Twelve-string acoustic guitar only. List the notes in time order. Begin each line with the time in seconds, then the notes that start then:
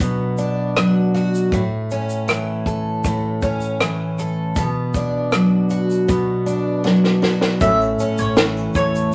Already playing: F#3 D4 F#4
0.01 B2
0.38 D4
0.77 F#3
1.14 F#4
1.53 A2
1.92 C#4
2.28 E3
2.67 A4
3.06 A2
3.43 C#4
3.81 E3
4.19 A4
4.58 B2
4.96 D4
5.33 F#3
5.71 F#4
6.08 B2
6.46 D4
6.84 F#3
7.22 F#4
7.62 A2
8.00 C#4
8.37 E3
8.76 A3